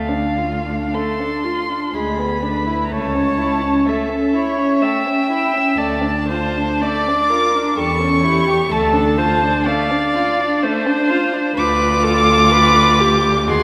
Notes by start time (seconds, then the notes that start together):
Already playing: D2 A3 F5
0.09 D4
0.38 F4
0.66 D4
0.93 A3 A4 C6
1.19 D4
1.44 F4
1.69 D4
1.94 D2 G#3 G#4 B5
2.18 B3
2.42 D4 B4
2.66 E4
2.85 A#5
2.91 C#2 A3 C#5 A5
3.15 C#4
3.38 E4
3.62 C#4
3.86 A3 A4 E5
4.09 C#4
4.33 E4 C#5
4.58 C#4
4.81 A3 E5 G5
5.06 C#4
5.29 E4 E5
5.53 C#4
5.77 D2 A3 D5 A5
6.01 D4
6.28 F4 C5
6.57 D4
6.80 A3 D5 D6
7.08 D4
7.29 F4 A#4
7.55 D4
7.76 E2 G3 A4 C#6
8.00 C#4
8.23 E4 G4
8.47 G4
8.70 D2 A3 A4 A5
8.93 D4
9.18 F4 C5
9.43 D4
9.65 A3 D5 F5
9.91 D4
10.16 F4
10.40 D4
10.63 A3 C5
10.87 D4
11.10 F4
11.33 D4
11.57 D2 F4 B4 D6
12.03 A4
12.51 B4
13.00 G4
13.47 D#2 F#4 G#4 C6